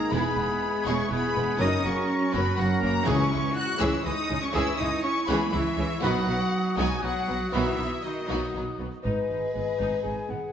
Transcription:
Already playing: G#3 A#3 D#4 G#4 A#4 A#5 G#6
0.12 E1 G#3 B3 E4 G#4 B4 B5 G#6
0.37 E1 G#3 B3 E4
0.86 E1 G#3 B3 C#4 E4 G#4 C#5 C#6
1.10 E1 G#3 B3 E4 G#4 B4 B5 G#6
1.35 E1 G#3 B3
1.60 F#1 F#3 C#4 D#4 F#4 A#4 D#5 D#6 A#6
1.84 F#1 F#3 A#3 C#4 F#4 C#5 C#6
2.33 F#1 F#3 B3 C#4 A#4 B4 B5
2.57 F#1 F#3 A#3 C#4 F#4 A#4 F#5 A#6
2.81 F#1 F#3 A#3 C#4 A#4 A#5
3.06 C#2 C#3 E3 G#3 C#4 E4 G#4 C#5 C#6
3.31 C#2 E3 G#3 E4
3.54 F#4 F#5 F#6
3.79 C#2 E3 G#3 C#4 E4 G#4 E5 E6
4.05 C#2 E3 G#3 D#4 E4 D#5 D#6
4.29 C#2 E3 G#3 C#4
4.41 C#4 C#5 C#6
4.53 C#2 E3 G#3 C#4 E4 G#4 E5 C#6 E6
4.78 C#2 E3 G#3 D#4 E4 D#5 D#6
5.03 C#4 E4 C#5 C#6
5.27 C#2 E3 G#3 B3 C#4 G#4 B4 B5
5.53 C#2 E3 G#3 E4 E5 C#6
5.77 C#2 E3 G#3 C#4
6.02 B1 D#3 F#3 B3 D#4 F#4 B4 F#5 D#6
6.28 B1 F#3 B3 D#4
6.78 B1 F#3 G#3 B3 D#4 F#4 G#4 G#5
7.03 B1 F#3 B3 D#4 F#4 F#5 D#6
7.28 B1 F#3 B3
7.52 B1 D#3 E3 F#3 B3 D#4 E4 F#4 B4 E5
7.78 B1 F#3 B3 D#4
8.05 D#3 D#4 F#4 D#5 D#6
8.29 B1 F#3 B3 D#4 F#4
8.54 B1 F#3 B3 D#4
8.80 B1 F#3 B3
9.03 G#1 G#2 D#4 G#4 B4 D#5
9.30 G#1 G#2 D#4
9.54 G#1 G#2 B3 B4
9.79 G#1 G#2 D#4
10.04 G#1 G#2 D#4 G#4 G#5
10.29 G#1 G#2 B3 F#5

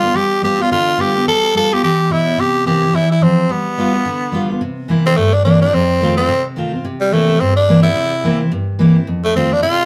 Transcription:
Already playing: D3 F4
0.02 B3 F4
0.14 G3 G4
0.42 G3 B3 F4 G4
0.59 B3 F4
0.71 D3 F4
0.98 G3 B3 F4 G4
1.14 B3 F4
1.27 G3 A4
1.55 G3 B3 F4 A4
1.71 B3 F4 G4
1.83 E3 G4
2.10 B2 E4
2.38 C3 G4
2.65 E3 A#3 C4 E4 G4
2.82 C4 E4
2.93 E3 E4
3.12 E4
3.21 F3 C4
3.49 G3 B3
3.78 G3 B3 F4
3.93 B3 F4
4.05 D3
4.32 G3 B3 F4
4.49 B3 F4
4.61 C3
4.88 E3 A#3 C4 E4
5.06 C4 E4
5.16 G2 A3
5.33 D4
5.45 E3 A#3 C4 D4 E4
5.61 C4 D4 E4
5.73 F2 C4
6.01 D#3 A3 C4 F4
6.17 C4 F4
6.29 C3
6.56 D#3 A3 C4 F4
6.73 C4 F4
6.84 C3
7.01 G3
7.11 E3 A3 A#3 C4 E4
7.29 C4 E4
7.40 G2 C4
7.56 D4
7.68 E3 A#3 C4 E4
7.83 C4 E4
7.95 C3
8.23 E3 A#3 C4 E4
8.40 C4 E4
8.51 G2
8.79 E3 A#3 C4 E4
8.96 C4 E4
9.07 F2
9.25 A3
9.35 D#3 A3 C4 F4
9.52 C4 D4 F4
9.63 C3 F4

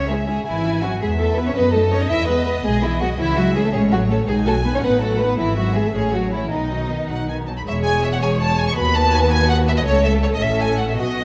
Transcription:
Already playing: C#2 E5
0.09 G#3 C#4 E4 G#4
0.27 G#3 C#4 E4 G#4
0.45 G#1 E3 E4 G#5
0.64 C#4 E4
0.82 F#3 C#4 E4 F#4
1.00 E2 G#3 G#4 E5
1.19 A3 B3 E4 A4
1.37 B3 E4 B4
1.47 C#4 C#5
1.55 F#2 B3 B4 D#5
1.74 A3 D#4 A4
1.92 A3 C#4 D#4 C#5
2.01 D#4 D#5
2.09 E2 E4 E5
2.27 G#3 B3 B4
2.45 G#3 B3 B4
2.63 B1 G#3 G#4
2.82 E3 G#3 B3 E4
3.00 F#3 G#3 B3 F#4
3.18 C#2 E3 C#4 E4 E5
3.36 F#3 G#3 E4 F#4
3.55 E3 G#3 C#4 G#4
3.64 A3 A4
3.73 A1 G#3 A3 C#4 G#4 C#5
3.90 F#3 A3 F#4
4.09 A3 C#4 A4
4.27 B1 D#3 G#3 D#4 G#4 G#5
4.46 F#3 A3 F#4 A4
4.64 D#3 B3 D#4 B4
4.73 C#4 C#5
4.83 A1 D#3 B3 D#4 B4 F#5
5.01 F#3 A3 F#4 A4
5.18 D#3 B3 D#4 B4
5.37 G#1 E3 B3 E4 E5
5.55 F#3 G#3 E4 F#4
5.74 E3 G#3 B3 G#4
5.85 A3 A4
5.93 A1 G#3 A3 C#4 G#4 C#5
6.12 F#3 A3 F#4
6.32 E3 A3 C#4 E4
6.51 B1 D#3 B3 D#4 D#5
6.71 F#3 D#4
6.90 D#3 B3
7.08 B1 F#3 D#4 F#5
7.29 D#3 B3 G#5
7.47 F#3 D#4 A5
7.57 B5
7.67 E1 E2 G#3 G#4 C#5 E5
7.85 G#5
8.04 E5
8.12 F#5
8.22 G#3 G#4 G#5
8.40 A5
8.58 G#5
8.68 C#6
8.76 D#2 B3 F#4 B4 B5
8.95 A5
9.14 G#5
9.23 A5
9.32 G#5
9.50 F#5
9.68 E5
9.77 D#5
9.85 C#2 A3 A4 C#5
10.04 E5
10.23 C#5
10.33 D#5
10.41 A1 A2 C#4 A4 E5
10.60 G#5
10.78 F#5
10.89 E5
10.97 B1 B2 B3 F#4 D#5

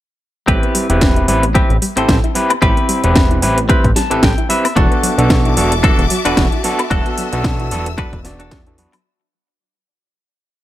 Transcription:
0.47 A1 G3 C4 E4 G4 B4, kick, closed hi-hat
0.63 B3, closed hi-hat
0.75 G3, open hi-hat
0.89 E1 C4 E4 G4 B4, closed hi-hat
1.01 G3, kick, snare, closed hi-hat
1.16 E4, closed hi-hat
1.28 A1 G3 C4 E4 G4 B4, open hi-hat
1.43 B3, closed hi-hat
1.55 G3 C4 E4 G4 B4, kick, closed hi-hat
1.70 A1 B3, closed hi-hat
1.82 G3, open hi-hat
1.96 A1 C4 E4 G4 A4 C5, closed hi-hat
2.09 A1 G3, kick, snare, closed hi-hat
2.24 E4, closed hi-hat
2.35 G3 C4 E4 G4 B4, muted clean electric guitar stroke, open hi-hat
2.50 B3, muted clean electric guitar stroke, closed hi-hat, high woodblock
2.62 A1 G3 C4 E4 G4 B4 B5, kick, closed hi-hat
2.77 B3, closed hi-hat
2.89 G3, open hi-hat
3.04 E1 C4 E4 G4 B4, closed hi-hat
3.15 G3, kick, snare, closed hi-hat
3.31 E4, closed hi-hat
3.42 A1 G3 C4 E4 G4 B4, open hi-hat
3.57 B3, closed hi-hat
3.69 G3 C4 E4 G4 B4, kick, closed hi-hat
3.84 A1 B3, kick, closed hi-hat
3.96 G3 A5, snare, open hi-hat
4.10 A1 C4 E4 G4 A4 B4, closed hi-hat
4.23 A1 G3 G5, kick, snare, closed hi-hat
4.38 E4, closed hi-hat
4.49 G3 C4 E4 G4 B4 E5, muted clean electric guitar stroke, open hi-hat
4.64 B3, muted clean electric guitar stroke, open hi-hat, high woodblock
4.76 E1 F#3 B3 D4 F#4 A4 E5 A5 D6, kick, closed hi-hat
4.91 B3, closed hi-hat
5.03 F#3, open hi-hat
5.18 B1 B3 D4 F#4 A4, closed hi-hat
5.30 F#3, kick, snare, closed hi-hat
5.45 E4, closed hi-hat
5.57 E1 F#3 B3 D4 F#4 A4, open hi-hat
5.72 B3, closed hi-hat
5.83 F#3 B3 D4 F#4 A4, kick, closed hi-hat
5.99 E1 B3, closed hi-hat
6.10 F#3, open hi-hat
6.25 E1 B3 D4 F#4 A4 B4, closed hi-hat
6.37 E1 F#3, kick, snare, closed hi-hat
6.52 E4, closed hi-hat
6.63 F#3 B3 D4 F#4 A4, muted clean electric guitar stroke, open hi-hat
6.79 B3, muted clean electric guitar stroke, closed hi-hat, high woodblock
6.90 E1 F#3 B3 D4 F#4 A4 E6, kick, closed hi-hat
7.06 B3, closed hi-hat
7.18 F#3, open hi-hat
7.32 B1 B3 D4 F#4 A4, closed hi-hat
7.44 F#3, kick, snare, closed hi-hat
7.60 E4, closed hi-hat
7.71 E1 F#3 B3 D4 F#4 A4, open hi-hat
7.86 B3, closed hi-hat
7.98 F#3 B3 D4 F#4 A4 B4, kick, closed hi-hat
8.13 E1 B3, kick, closed hi-hat
8.24 B3 D4 F#4 D5, snare, open hi-hat
8.39 D4 F#4 A4, closed hi-hat
8.51 E2 B3, kick, snare, closed hi-hat
8.66 B3 D4 F#4 A4, closed hi-hat
8.78 F#3 B3 D4 F#4 B4, muted clean electric guitar stroke, open hi-hat
8.92 F#3, muted clean electric guitar stroke, open hi-hat, high woodblock

